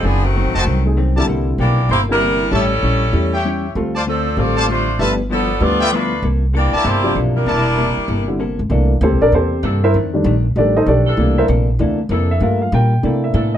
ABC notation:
X:1
M:4/4
L:1/8
Q:"Swing" 1/4=194
K:Cmix
V:1 name="Trumpet section"
z3 [^Fc^da] z3 [EB=da] | z8 | [G^cea] z4 [Gceg]3 | z [Fcda] z3 [Fcda] z2 |
[F=Bea] z4 [FBeg] z2 | z3 [EBda]3 z2 | [EBda]3 z4 z | z8 |
z8 | z8 | z8 |]
V:2 name="Grand piano"
z4 z [A,C^D_A] z [=D,G,CE]- | [D,G,CE]2 z3 [D,G,CE]3 | [G,A,^CE] z3 [G,A,CE] z3 | [G,CFA] z3 [G,CFA]3 z |
[A,DG=B] z3 [A,DGB] z3 | z4 z [C,F,B,D]3 | z4 z [D,G,CE] z2 | z2 [CGAc] [DABd] [CGAc]3 [EBce] |
z4 [GAd] [_EAc_e] [DGAd]2- | [DGAd] [EBce] z4 z e- | e f g3 e2 _e |]
V:3 name="Grand piano"
z8 | z8 | z8 | z8 |
z8 | z8 | z8 | [E,A,B,D] z6 z |
z [_E,G,A,D] z2 [E,G,A,D] z3 | [E,A,B,D]3 z [E,A,B,D] z3 | [A,B,F] z3 [A,B,DE]3 z |]
V:4 name="Saxophone section"
[F,=B,D_A] [^D,=A,C^F]4 z3 | z2 [E,B,DG]2 [B,EGc] [G,DEB]3 | [G,^CEA]6 z2 | z2 [F,CDA]2 [CFAd]2 [A,DFc]2 |
z2 [F,=B,DA]2 [B,FAd]2 [A,DF=B]2 | z2 [E,B,DG]2 [B,EGc]2 z [G,DEB]- | [G,DEB]6 z2 | z8 |
z8 | z8 | z8 |]
V:5 name="Saxophone section"
z8 | z8 | z8 | z8 |
z8 | z8 | z8 | z6 [E,B,DA]2 |
z6 z [E,DA]- | [E,DA]2 z4 [E,B,DA]2 | z6 [E,DA]2 |]
V:6 name="Hollow-body jazz guitar"
[^F,,^D,A,C] z [F,,D,A,C] z [F,,D,A,C] z [F,,D,A,C] z | [C,B,EA] z [C,B,EA] z [C,B,EA] z [C,B,EA] z | [A,,G,^CE] z [A,,G,CE] z [A,,G,CE] z [A,,G,CE] z | [D,A,CF] z [D,A,CF] z [D,A,CF] z [D,A,CF] z |
[G,,F,=B,E] z [G,,F,B,E] z [G,,F,B,E] z [G,,F,B,E] z | [C,B,EA] z [C,B,EA] z [C,B,EA] z [C,B,EA] z | [C,B,EA] z [C,B,EA] z [C,B,EA] z [C,B,EA] z | [C,B,EA] z [C,B,EA] z [C,B,EA] z [C,B,EA] z |
[F,,_E,A,D] z [F,,E,A,D] z [F,,E,A,D] z [F,,E,A,D] z | [C,B,EA] z [C,B,EA] z [C,B,EA] z [C,B,EA] z | [G,DFB] z [G,DFB] z [C,B,EA] z [C,B,EA] z |]
V:7 name="Upright bass" clef=bass
^F,,,2- (3F,,, A,,, =F,,, C,,4 | C,,2 =B,,,2 G,,,4 | A,,,2 B,,,2 E,,4 | D,,4 A,,,4 |
G,,,4 D,,4 | C,,3 z G,,,2 =B,,,2 | E,,,3 z G,,,3 _D,, | C,,2 (3D,, C,, B,,, E,,2 G,,2 |
F,,2 B,,,2 A,,,2 =B,,,2 | C,,2 B,,,2 D,,2 F,,2 | G,,2 B,,2 C,2 A,,2 |]